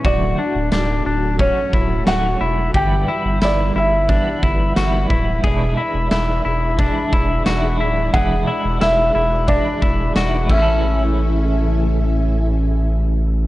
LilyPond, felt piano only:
\new Staff \with { instrumentName = "Felt piano" } { \time 4/4 \key a \major \tempo 4 = 89 d''2 cis''4 fis''4 | g''4 d''8 e''4 r4. | r1 | fis''4 e''4 d''4. e''8~ |
e''1 | }